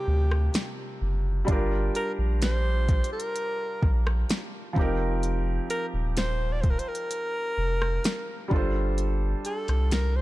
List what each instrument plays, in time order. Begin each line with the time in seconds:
Already playing: felt piano C3 G3 A#3 D4 D#4 F4, alto saxophone G4
0.08 sub bass D2
0.31 cross-stick
0.54 snare, closed hi-hat
1.02 sub bass F#1
1.45 sub bass G1, felt piano G3 D4 F4, kick, closed hi-hat
1.51 felt piano G4 A#4
1.95 alto saxophone A#4, closed hi-hat
2.18 sub bass A#1
2.42 alto saxophone C5, snare, closed hi-hat
2.89 kick, closed hi-hat
3.04 closed hi-hat
3.13 alto saxophone A#4
3.20 closed hi-hat
3.36 closed hi-hat
3.83 sub bass A#1, kick
4.07 cross-stick
4.29 snare, closed hi-hat
4.73 sub bass F1, felt piano F3 C4 D#4, kick
4.79 felt piano G4 A#4
5.23 closed hi-hat
5.70 alto saxophone A#4, closed hi-hat
5.94 sub bass D#1
6.17 alto saxophone C5, snare, closed hi-hat
6.52 alto saxophone D5
6.61 alto saxophone C5, kick, closed hi-hat
6.70 alto saxophone A#4
6.79 alto saxophone C5, closed hi-hat
6.88 alto saxophone A#4
6.95 closed hi-hat
7.11 closed hi-hat
7.58 sub bass F1
7.82 cross-stick
8.04 snare, closed hi-hat
8.48 sub bass G1, felt piano G3 D4 F4, kick
8.54 felt piano A4 C5
8.98 closed hi-hat
9.45 alto saxophone A4, closed hi-hat
9.68 sub bass C2, cross-stick, closed hi-hat
9.91 alto saxophone A#4, snare, closed hi-hat
10.16 alto saxophone C5